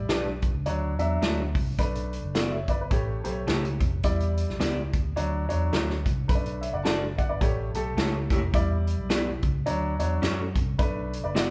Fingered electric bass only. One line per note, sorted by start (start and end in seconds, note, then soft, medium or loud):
0.09 0.48 B1 medium
0.53 0.64 C#2 medium
0.66 0.95 D2 loud
0.99 1.19 E2 medium
1.55 1.75 C2 medium
1.78 2.17 B1 medium
2.23 2.63 F#1 medium
2.68 2.88 G1 medium
2.91 3.20 A1 medium
3.26 3.45 B1 medium
3.48 3.77 C#2 medium
3.80 4.01 F1 medium
4.04 4.43 E2 loud
4.50 4.59 B1 medium
4.61 4.90 C#2 medium
4.94 5.14 D2 medium
5.18 5.46 D2 medium
5.51 5.70 E2 medium
5.73 6.02 D2 medium
6.06 6.26 C2 medium
6.29 6.68 B1 medium
6.74 7.13 F#1 medium
7.19 7.39 G1 medium
7.41 7.70 A1 medium
7.74 7.94 B1 medium
7.97 8.26 C#2 medium
8.30 8.51 F1 medium
8.54 8.93 E2 loud
8.98 9.38 B1 medium
9.43 9.63 C#2 medium
9.66 9.96 D2 medium
10.00 10.20 E2 medium
10.23 10.57 F#2 medium
10.55 10.76 C2 medium
10.79 11.18 B1 loud
11.24 11.50 F#1 medium